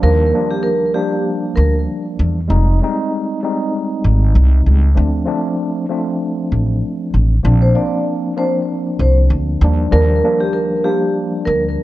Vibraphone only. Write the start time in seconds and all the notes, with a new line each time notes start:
0.03 A#4
0.50 G4
0.63 A#4
0.94 G4
1.56 A#4
7.62 C5
7.75 D5
8.38 C5
9.00 C5
9.92 A#4
10.40 G4
10.53 A#4
10.84 G4
11.45 A#4